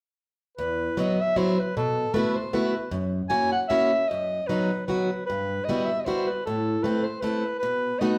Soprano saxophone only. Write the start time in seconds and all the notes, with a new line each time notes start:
0.57 B4
0.99 D#5
1.21 E5
1.38 C5
1.59 B4
1.77 A4
2.14 B4
2.35 C5
2.54 B4
3.30 G#5
3.52 F#5
3.68 E5
4.08 D#5
4.47 B4
4.87 B4
5.26 B4
5.65 D#5
5.86 E5
6.00 D#5
6.05 C5
6.27 B4
6.46 A4
6.83 B4
7.04 C5
7.20 B4
7.59 B4
7.99 D#5